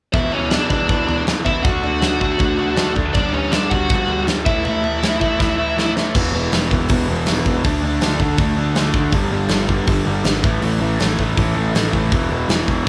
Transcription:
0.13 E2 B2 E3 E4 E5, kick, floor tom
0.31 E2 B2 E3 C#4 C#5, floor tom
0.50 E2 B2 E3 D4 D5, snare, floor tom
0.70 E2 B2 E3 D4 D5, kick, floor tom
0.89 E2 B2 E3, kick, floor tom
1.08 E2 B2 E3, floor tom
1.26 E2 B2 E3, snare, floor tom
1.45 E2 B2 E3 E4 E5, kick, floor tom
1.63 D3 A3 D4 F#4 F#5, kick, floor tom
1.84 D3 A3 D4, floor tom
2.01 D3 A3 D4, snare, floor tom
2.20 D3 A3 D4, kick, floor tom
2.38 D3 A3 D4, kick, floor tom
2.58 D3 A3 D4, floor tom
2.76 D3 A3 D4, snare, floor tom
2.96 D3 A3 D4, kick, floor tom
3.14 G2 D3 G3 D4 D5, kick, floor tom
3.33 G2 D3 G3 C#5, floor tom
3.37 C#4
3.51 G2 D3 G3 D4 D5, snare, floor tom
3.70 G2 D3 G3 F#4 F#5, kick, floor tom
3.90 G2 D3 G3, kick, floor tom
4.08 G2 D3 G3, floor tom
4.27 G2 D3 G3, snare, floor tom
4.46 A2 E3 A3 E4 E5, kick, floor tom
4.65 A2 E3 A3 E4 E5, floor tom
4.84 A2 E3 A3, floor tom
5.03 A2 E3 A3, snare, floor tom
5.21 A2 E3 A3, kick, floor tom
5.39 A2 E3 A3, kick, snare
5.57 A2 E3 A3
5.77 A2 E3 A3, snare
5.96 A2 E3 A3, snare
6.15 E1 E2 B2 E3, kick, crash
6.34 E1 E2 B2 E3
6.52 E1 E2 B2 E3, snare, open hi-hat
6.71 E1 E2 B2 E3, kick
6.89 E1 E2 B2 E3, kick, open hi-hat
7.08 E1 E2 B2 E3
7.26 E1 E2 B2 E3, snare, open hi-hat
7.45 E2 B2 E3, kick
7.64 D2 D3 A3 D4, kick, open hi-hat
7.83 D2 D3 A3 D4
8.01 D2 D3 A3 D4, snare, open hi-hat
8.20 D2 D3 A3 D4, kick
8.38 D2 D3 A3 D4, kick, open hi-hat
8.57 D3 A3 D4
8.74 D2 D3 A3, snare, open hi-hat
8.78 D4
8.94 D3 A3 D4, kick
9.12 G1 G2 D3 G3, kick, open hi-hat
9.31 G1 G2 D3 G3
9.49 G1 G2 D3 G3, snare, open hi-hat
9.68 G1 G2 D3 G3, kick
9.87 G1 G2 D3 G3, kick, open hi-hat
10.05 G1 G2 D3 G3
10.24 G#1 G2 D3 G3, snare, open hi-hat
10.43 A1 A2 E3 A3, kick
10.61 A1 A2 E3 A3, open hi-hat
10.80 A1 A2 E3 A3
10.99 A1 A2 E3 A3, snare, open hi-hat
11.18 A1 A2 E3 A3, kick
11.37 A1 A2 E3 A3, kick, open hi-hat
11.56 A2 E3 A3
11.74 A1 A2 E3 A3, snare, open hi-hat
11.92 A2 E3 A3, kick
12.12 E1 E2 B2 E3, kick, open hi-hat
12.29 E1 E2 B2 E3
12.48 E1 E2 B2 E3, snare, open hi-hat
12.67 E1 E2 B2 E3, kick
12.86 E2

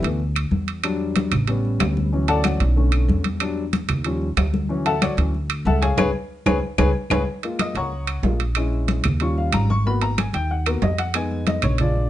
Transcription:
0.02 D2 E3 A3 B3, high timbale
0.20 high conga
0.35 high conga, high timbale, claves
0.51 E2, high conga
0.68 high timbale
0.83 F#3 G3 D4, high conga, high timbale, claves
1.00 high conga
1.16 high conga, high timbale
1.31 A1, high conga, low conga, high timbale, claves
1.47 G3 B3 C#4, high conga, high timbale
1.65 high conga
1.80 D2, high conga, high timbale, low timbale, claves
1.97 high conga
2.12 E3 F#3 C#4, high conga
2.28 A4 D5 F#5 A5, high conga, high timbale
2.44 F#4 C#5 D5 F#5, high conga, high timbale, claves
2.60 B1, high timbale
2.76 D3 A3 C#4, high conga
2.92 high conga, high timbale, claves
3.08 E2, high conga
3.24 high conga, high timbale
3.40 F#3 G3 D4, high conga, high timbale, claves
3.57 high conga
3.73 high conga, high timbale
3.88 D#2, high conga, low conga, high timbale, claves
4.04 F3 G3 C#4, high conga, high timbale
4.22 high conga
4.37 D2, high conga, high timbale, low timbale, claves
4.54 high conga
4.69 E3 F#3 C#4, high conga
4.86 A4 E5 F#5 A5, high conga, high timbale
5.02 F#4 C#5 D5 F#5, high conga, high timbale, claves
5.17 D2 E3 F#3 C#4, high timbale
5.35 high conga
5.50 high conga, high timbale, claves
5.65 C#2 A4 E5 F#5 A5, high conga
5.82 G#4 C#5 F5 G#5, high conga, high timbale
5.97 C#2 G#4 B4 C#5, high conga, high timbale, claves
6.46 C#2 G#4 B4 C#5, high conga, high timbale, claves
6.78 C#2 G#4 B4 C#5, high conga, high timbale, claves
7.10 C#2 G#4 B4 C#5, high conga, high timbale, claves
7.27 high conga
7.43 G#3 A#3 F4, high conga, high timbale
7.59 D#5 D#6, high conga, high timbale, claves
7.75 C#2 C#5 F#5 A#5 C#6, high timbale
7.92 high conga
8.07 high conga, high timbale, claves
8.23 A#1 G#3 A#3 F4, high conga, low timbale
8.40 high timbale
8.55 G#3 C#4 E4, high conga, high timbale, claves
8.73 high conga
8.88 high conga, high timbale
9.04 D#2, high conga, low conga, high timbale, claves
9.20 G3 C#4 F4 C#6, high timbale
9.37 F5, high conga
9.52 G#1 A#5, high conga, high timbale, claves
9.70 C#6, high conga
9.86 A#3 B3 F#4 B5, high conga
10.01 A#5, high conga, high timbale
10.18 G#5, high conga, high timbale, claves
10.33 D#2 G5, high timbale
10.50 F#5, high conga
10.66 A#3 B3 F#4 A#4, high conga, high timbale, claves
10.82 F2 D#5, high conga, low timbale
10.98 F#5, high timbale
11.14 G#3 B3 D#4 G#5, high conga, high timbale, claves
11.31 high conga
11.47 D#5, high conga, high timbale
11.62 A#1 C#5, high conga, low conga, high timbale, claves
11.78 G#3 D4 F4 D5, high conga, low conga, high timbale
11.96 high conga

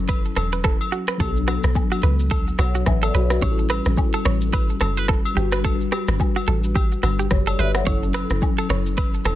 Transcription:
Already playing: F#1 F#3 C#4 E4 A4
0.08 B4, kick, high agogo, shaker
0.25 shaker
0.36 E1 A4, cross-stick, high agogo, shaker
0.53 B4, shaker
0.64 A4, kick, cross-stick, shaker
0.81 high agogo, shaker
0.92 F#4, shaker
1.08 B4, cross-stick, shaker
1.17 B1 F#3 B3 D4 A4, kick, high agogo, shaker
1.22 G4
1.29 A4
1.36 shaker
1.48 F#4, cross-stick, high agogo, shaker
1.64 B1, cross-stick, shaker
1.75 kick, low woodblock, shaker
1.92 F#4, high agogo, shaker
2.03 C#2 B4, shaker
2.19 shaker
2.31 A4, kick, high agogo, shaker
2.47 shaker
2.59 B1 F#4 C#5 F#5, cross-stick, high agogo, shaker
2.75 F#4, shaker
2.86 A1 B4 E5, kick, cross-stick, low woodblock, shaker
3.03 A4 D5, high agogo, shaker
3.14 B1 F#4 B4 C#5, shaker
3.30 F#4 B4, cross-stick, shaker
3.40 A1 G3 C#4 C#5, kick, high agogo, shaker
3.45 G4
3.51 A4
3.59 shaker
3.70 B4, cross-stick, high agogo, shaker
3.85 A1, cross-stick, shaker
3.97 kick, low woodblock, shaker
4.13 A4, high agogo, shaker
4.25 A1 C#5, cross-stick, shaker
4.41 shaker
4.53 B4, kick, high agogo, shaker
4.69 shaker
4.81 F#1 A4, cross-stick, high agogo, shaker
4.97 B4, shaker
5.08 A4, kick, cross-stick, shaker
5.25 high agogo, shaker
5.34 G1 G3 D4 F#4 G4, shaker
5.39 B4
5.52 B4, cross-stick, shaker
5.64 A4, kick, high agogo, shaker
5.81 shaker
5.92 G4, cross-stick, high agogo, shaker
6.08 G1, cross-stick, shaker
6.19 kick, low woodblock, shaker
6.36 F#4, high agogo, shaker
6.48 A1 A4, shaker
6.64 shaker
6.75 G4, kick, high agogo, shaker
6.92 shaker
7.03 G1 F#4, cross-stick, high agogo, shaker
7.19 G4, shaker
7.31 F#1 G4 C#5, kick, cross-stick, shaker
7.47 A4 D5, high agogo, shaker
7.59 G1 B4 E5, shaker
7.75 C#5 F#5, cross-stick, shaker
7.84 F#1 F#3 C#4 E4 C#5, kick, high agogo, shaker
7.89 A4
8.03 shaker
8.14 B4, cross-stick, high agogo, shaker
8.30 F#1, cross-stick, shaker
8.42 kick, low woodblock, shaker
8.58 A4, high agogo, shaker
8.70 F#1 C#5, cross-stick, shaker
8.86 shaker
8.97 B4, kick, high agogo, shaker
9.14 shaker
9.25 E1 A4, cross-stick, high agogo, shaker

